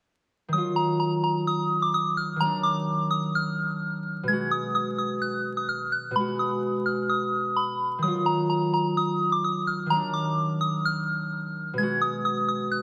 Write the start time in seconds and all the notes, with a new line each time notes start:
0.48 D#3
0.53 F#3 D#6
0.58 F4
0.76 A#5
1.00 A#5
1.24 A#5
1.47 D#6
1.82 D6
1.94 D#6
2.17 F6
2.36 D#3
2.40 F#3 A#5
2.45 D4
2.63 D6
3.11 D#6
3.35 F6
4.23 B2
4.28 G#3 G#6
4.33 F#4
4.51 D#6
4.75 D#6
4.98 D#6
5.22 F#6
5.57 D#6
5.69 F6
5.92 F#6
6.11 B2
6.16 G#3 B5
6.20 F#4
6.39 D#6
6.86 F6
7.09 D#6
7.56 B5
7.98 D#3
8.03 F#3 D#6
8.08 F4
8.26 A#5
8.50 A#5
8.74 A#5
8.97 D#6
9.32 D6
9.44 D#6
9.67 F6
9.86 D#3
9.90 F#3 A#5
9.95 D4
10.14 D6
10.61 D#6
10.85 F6
11.73 B2
11.78 G#3 G#6
11.83 F#4
12.02 D#6
12.25 D#6
12.48 D#6
12.72 F#6